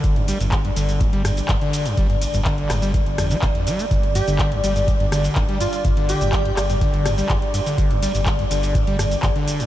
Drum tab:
RD |--x---x---x---x-|--x---x---x---x-|--x---x---x---x-|--x---x---x---x-|
HH |xxoxxxoxxxoxxxox|xxoxxxoxxxoxxxox|xxoxxxoxxxoxxxox|xxoxxxoxxxoxxxox|
SH |x-xxx-xxx-xxx-xx|x-xxx-xxx-xxx-xx|x-xxx-xxx-xxx-xx|x-xxx-xxx-xxx-xx|
CP |----x-------x---|----x-x-----x---|----x-------x---|----x-x-----x---|
SD |----------r-----|------r---r-----|----------r-----|------r---r-----|
BD |o---o---o---o---|o---o---o---o---|o---o---o---o---|o---o---o---o---|

RD |--x---x---x---x-|
HH |xxoxxxoxxxoxxxox|
SH |x-xxx-xxx-xxx-xx|
CP |----x-------x---|
SD |----------r-----|
BD |o---o---o---o---|